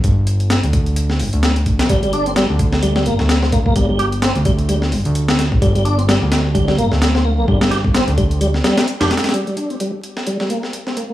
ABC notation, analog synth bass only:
X:1
M:4/4
L:1/16
Q:"Swing 16ths" 1/4=129
K:Gm
V:1 name="Analog synth bass" clef=bass
G,,,4- G,,, D,,4- D,, G,,, D,,4 B,,, | G,,,4- G,,, D,,4- D,, G,,, D,,4 B,,, | G,,,4- G,,, D,,4- D,, G,,, D,,4 B,,, | G,,,4- G,,, D,,4- D,, G,,, D,,4 B,,, |
G,,,4- G,,, D,,4- D,, z3 F,,, z2 | z16 |]